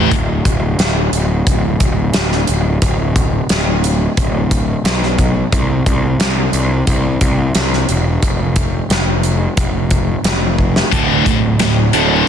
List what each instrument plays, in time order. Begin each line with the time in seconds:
Already playing: distorted electric guitar A2 E3 A3
0.11 picked electric bass D1, kick, closed hi-hat
0.45 picked electric bass D1, kick, closed hi-hat
0.78 picked electric bass D1, snare, closed hi-hat
1.13 picked electric bass D1, closed hi-hat
1.47 picked electric bass D1, kick, closed hi-hat
1.80 picked electric bass D1, kick, closed hi-hat
2.14 picked electric bass D1, snare, closed hi-hat
2.32 snare
2.47 picked electric bass D1, closed hi-hat
2.82 picked electric bass D1, kick, closed hi-hat
3.16 kick, closed hi-hat
3.49 picked electric bass D1, snare, closed hi-hat
3.84 closed hi-hat
4.17 picked electric bass D1, kick, closed hi-hat
4.51 kick, closed hi-hat
4.84 picked electric bass B1, snare, closed hi-hat
5.03 snare
5.18 kick, closed hi-hat
5.52 picked electric bass C2, kick, closed hi-hat
5.86 picked electric bass C2, kick, closed hi-hat
6.19 picked electric bass C2, snare, closed hi-hat
6.53 picked electric bass C2, closed hi-hat
6.87 picked electric bass C2, kick, closed hi-hat
7.21 picked electric bass C2, kick, closed hi-hat
7.55 picked electric bass C2, snare, closed hi-hat
7.73 snare
7.89 picked electric bass E1, closed hi-hat
8.22 picked electric bass F1, kick, closed hi-hat
8.56 kick, closed hi-hat
8.90 picked electric bass F1, snare, closed hi-hat
9.23 closed hi-hat
9.57 picked electric bass F1, kick, closed hi-hat
9.91 kick, closed hi-hat
10.24 picked electric bass F1, snare, closed hi-hat
10.59 kick
10.76 snare
10.92 picked electric bass D1, distorted electric guitar D2 A2 D3, kick, closed hi-hat
11.25 picked electric bass D1, distorted electric guitar D2 A2, kick, closed hi-hat
11.59 picked electric bass D1, distorted electric guitar D2 A2, snare, closed hi-hat
11.93 picked electric bass D1, distorted electric guitar D2 A2 D3, closed hi-hat